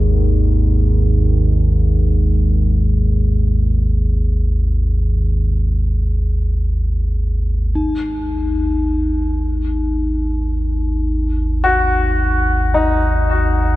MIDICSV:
0, 0, Header, 1, 4, 480
1, 0, Start_track
1, 0, Tempo, 500000
1, 13211, End_track
2, 0, Start_track
2, 0, Title_t, "Grand piano"
2, 0, Program_c, 0, 0
2, 7617, Control_c, 0, 64, 127
2, 11171, Note_on_c, 0, 66, 69
2, 12233, Note_on_c, 0, 63, 59
2, 12455, Note_off_c, 0, 66, 0
2, 13211, Note_off_c, 0, 63, 0
2, 13211, End_track
3, 0, Start_track
3, 0, Title_t, "Singing bowl"
3, 0, Program_c, 1, 14
3, 0, Note_on_c, 1, 56, 61
3, 0, Note_on_c, 1, 68, 61
3, 7444, Note_on_c, 1, 63, 68
3, 7471, Note_off_c, 1, 68, 0
3, 7473, Note_off_c, 1, 56, 0
3, 13211, Note_off_c, 1, 63, 0
3, 13211, End_track
4, 0, Start_track
4, 0, Title_t, "Synth drone"
4, 0, Program_c, 2, 95
4, 0, Note_on_c, 2, 32, 70
4, 0, Note_on_c, 2, 39, 70
4, 7433, Note_off_c, 2, 32, 0
4, 7433, Note_off_c, 2, 39, 0
4, 7445, Note_on_c, 2, 32, 76
4, 7445, Note_on_c, 2, 39, 73
4, 13211, Note_off_c, 2, 32, 0
4, 13211, Note_off_c, 2, 39, 0
4, 13211, End_track
0, 0, End_of_file